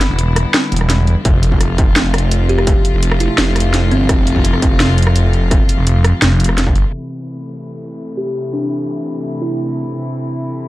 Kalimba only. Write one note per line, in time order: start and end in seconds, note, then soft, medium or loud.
2.49 2.55 G4 medium
2.59 2.64 G4 medium
3.20 3.42 E4 medium
3.91 4.18 C4 medium
8.17 8.23 G4 medium
8.26 8.32 G4 medium
8.53 8.59 D4 medium
8.62 8.68 D4 medium
9.42 9.91 E4 medium